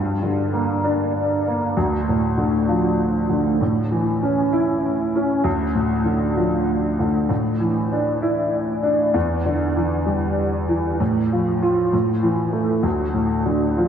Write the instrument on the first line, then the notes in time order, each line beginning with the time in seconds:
grand piano
Already playing: G2
0.23 D3
0.53 A#3
0.84 D4
1.48 A#3
1.77 D2
2.08 A2
2.38 D3
2.68 F3
3.30 D3
3.61 A2
3.91 E3
4.23 C#4
4.53 E4
5.16 C#4
5.44 D2
5.75 A2
6.05 D3
6.36 F3
6.99 D3
7.29 A2
7.60 E3
7.92 D4
8.22 E4
8.83 D4
9.14 E2
9.45 D3
9.77 E3
10.06 G3
10.68 E3
11.00 A2
11.32 F3
11.62 F4
11.93 A2
12.23 E3
12.53 A3
12.83 D2
13.14 A2
13.46 D3
13.77 F3